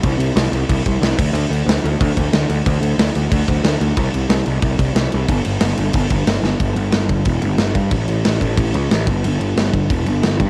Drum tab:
CC |xxxxxxxx|xxxxxxxx|xxxxxxxx|xxxxxxxx|
SD |--o---o-|--o---o-|--o---o-|--o---o-|
BD |o---oo-o|----oo--|o---oo--|o---oo--|

CC |xxxxxxx-|xxxxxxxx|xxxxxxxx|xxxxxxxx|
SD |--o---oo|--o---o-|--o---o-|--o---o-|
BD |o---oo--|o--oo--o|o--oo--o|---oo--o|